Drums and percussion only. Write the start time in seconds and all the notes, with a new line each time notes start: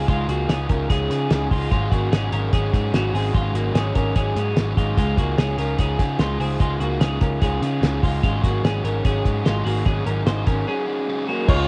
0.09 kick, closed hi-hat
0.29 closed hi-hat
0.50 snare, closed hi-hat
0.69 kick, closed hi-hat
0.90 kick, closed hi-hat
1.10 snare, closed hi-hat
1.31 snare, closed hi-hat
1.51 kick, open hi-hat
1.72 kick, closed hi-hat
1.92 kick, closed hi-hat
2.13 snare, closed hi-hat
2.32 closed hi-hat
2.53 kick, closed hi-hat
2.74 kick, closed hi-hat
2.94 snare, closed hi-hat
3.15 open hi-hat
3.35 kick, closed hi-hat
3.55 closed hi-hat
3.75 snare, closed hi-hat
3.95 kick, closed hi-hat
4.16 kick, closed hi-hat
4.36 snare, closed hi-hat
4.56 snare, closed hi-hat
4.77 kick, closed hi-hat
4.97 kick, closed hi-hat
5.17 kick, closed hi-hat
5.38 snare, closed hi-hat
5.58 closed hi-hat
5.78 kick, closed hi-hat
5.99 kick, snare, closed hi-hat
6.19 snare, closed hi-hat
6.41 open hi-hat
6.60 kick, closed hi-hat
6.81 closed hi-hat
7.01 snare, closed hi-hat
7.21 kick, closed hi-hat
7.42 kick, closed hi-hat
7.62 snare, closed hi-hat
7.83 snare, closed hi-hat
8.03 kick, open hi-hat
8.23 kick, closed hi-hat
8.44 kick, closed hi-hat
8.65 snare, closed hi-hat
8.85 closed hi-hat
9.05 kick, closed hi-hat
9.25 kick, closed hi-hat
9.46 snare, closed hi-hat
9.67 open hi-hat
9.86 kick, closed hi-hat
10.06 closed hi-hat
10.27 snare, closed hi-hat
10.47 kick, closed hi-hat
11.49 kick, crash